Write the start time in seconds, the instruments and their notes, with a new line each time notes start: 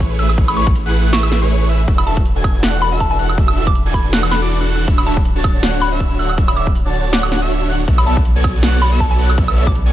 Already playing: sub bass A1, supersaw synth A3 E4 G#4 B4 C#5, digital synth lead C#6
0.00 kick, closed hi-hat
0.19 supersaw synth A3 E4 G#4 B4 E5, digital synth lead E6, synth pluck E6, closed hi-hat
0.29 high woodblock
0.38 supersaw synth A3 E4 G#4 B4 C#5, digital synth lead C#6, kick, closed hi-hat
0.48 synth pluck B5, high woodblock
0.57 supersaw synth A3 E4 G#4 B4 C#5, digital synth lead C#6, synth pluck C#6, closed hi-hat
0.67 kick
0.75 closed hi-hat
0.86 supersaw synth A3 E4 G#4 B4 F#5, digital synth lead F#6
0.94 closed hi-hat
1.13 supersaw synth A3 E4 G#4 B4 E5, synth pluck C#6, digital synth lead E6, snare, closed hi-hat
1.23 high woodblock
1.32 snare, closed hi-hat
1.42 supersaw synth A3 E4 G#4 B4 C#5, digital synth lead C#6
1.50 closed hi-hat
1.69 supersaw synth A3 E4 G#4 B4 E5, digital synth lead E6, closed hi-hat
1.88 sub bass E1, supersaw synth E3 D4 F#4 A4 E5, digital synth lead E6, kick, closed hi-hat
1.98 synth pluck B5, high woodblock
2.07 supersaw synth E3 D4 F#4 A4 E5, synth pluck A5, digital synth lead E6, closed hi-hat
2.17 kick
2.25 closed hi-hat
2.36 supersaw synth E3 D4 F#4 A4 G#5, digital synth lead G#6
2.44 kick, closed hi-hat, high woodblock
2.63 supersaw synth E3 D4 F#4 A4 F#5, digital synth lead F#6, snare, closed hi-hat
2.82 synth pluck B5, closed hi-hat
2.92 supersaw synth E3 D4 F#4 A4 E5, digital synth lead E6
3.00 synth pluck A5, kick, closed hi-hat
3.11 synth pluck A5
3.19 supersaw synth E3 D4 F#4 A4 F#5, digital synth lead F#6, closed hi-hat
3.30 high woodblock
3.38 supersaw synth E3 D4 F#4 A4 E5, digital synth lead E6, kick, closed hi-hat
3.48 high woodblock
3.57 supersaw synth E3 D4 F#4 A4 E5, digital synth lead E6, closed hi-hat
3.67 synth pluck D6, kick
3.75 closed hi-hat
3.86 supersaw synth E3 D4 F#4 A4 G#5, digital synth lead G#6
3.94 synth pluck B5, kick, closed hi-hat
4.13 supersaw synth E3 D4 F#4 A4 F#5, digital synth lead F#6, snare, closed hi-hat
4.23 high woodblock
4.31 synth pluck B5, snare, closed hi-hat
4.42 supersaw synth E3 D4 F#4 A4 D5, digital synth lead D6
4.50 closed hi-hat
4.61 supersaw synth E3 D4 F#4 A4 F#5, digital synth lead F#6
4.69 closed hi-hat
4.88 sub bass D1, supersaw synth D3 D4 F#4 C#5 E5, digital synth lead E6, kick, closed hi-hat
4.98 synth pluck B5, high woodblock
5.07 supersaw synth D3 D4 F#4 C#5 E5, synth pluck A5, digital synth lead E6, closed hi-hat
5.17 kick
5.25 closed hi-hat
5.36 supersaw synth D3 D4 F#4 C#5 A5, digital synth lead A6
5.44 kick, closed hi-hat, high woodblock
5.63 supersaw synth D3 D4 F#4 C#5 F#5, digital synth lead F#6, snare, closed hi-hat
5.82 synth pluck B5, closed hi-hat
5.92 supersaw synth D3 D4 F#4 C#5 E5, digital synth lead E6
6.00 kick, closed hi-hat
6.19 supersaw synth D3 D4 F#4 C#5 F#5, synth pluck E6, digital synth lead F#6, closed hi-hat
6.30 high woodblock
6.38 supersaw synth D3 D4 F#4 C#5 E5, digital synth lead E6, kick, closed hi-hat
6.48 synth pluck B5, high woodblock
6.57 supersaw synth D3 D4 F#4 C#5 E5, synth pluck D6, digital synth lead E6, closed hi-hat
6.67 kick
6.75 closed hi-hat
6.86 supersaw synth D3 D4 F#4 C#5 A5, digital synth lead A6
6.94 closed hi-hat
7.13 supersaw synth D3 D4 F#4 C#5 F#5, synth pluck D6, digital synth lead F#6, snare, closed hi-hat
7.23 high woodblock
7.32 snare, closed hi-hat
7.42 supersaw synth D3 D4 F#4 C#5 E5, digital synth lead E6
7.50 closed hi-hat
7.69 supersaw synth D3 D4 F#4 C#5 F#5, digital synth lead F#6, closed hi-hat
7.88 sub bass B1, supersaw synth B3 F#4 A4 C#5 D5 E5, digital synth lead E6, kick, closed hi-hat
7.98 synth pluck B5, high woodblock
8.07 supersaw synth B3 F#4 A4 C#5 D5 E5, synth pluck A5, digital synth lead E6, closed hi-hat
8.17 kick
8.25 closed hi-hat
8.36 supersaw synth B3 F#4 A4 C#5 D5 G#5, digital synth lead G#6
8.44 kick, closed hi-hat, high woodblock
8.63 supersaw synth B3 F#4 A4 C#5 D5 F#5, digital synth lead F#6, snare, closed hi-hat
8.82 synth pluck B5, closed hi-hat
8.92 supersaw synth B3 F#4 A4 C#5 D5 E5, digital synth lead E6
9.00 synth pluck A5, kick, closed hi-hat
9.11 synth pluck A5
9.19 supersaw synth B3 F#4 A4 C#5 D5 F#5, digital synth lead F#6, closed hi-hat
9.30 high woodblock
9.38 supersaw synth B3 F#4 A4 C#5 D5 E5, digital synth lead E6, kick, closed hi-hat
9.48 high woodblock
9.57 supersaw synth B3 F#4 A4 C#5 D5 E5, digital synth lead E6, closed hi-hat
9.67 synth pluck D6, kick
9.75 closed hi-hat
9.86 supersaw synth B3 F#4 A4 C#5 D5 G#5, digital synth lead G#6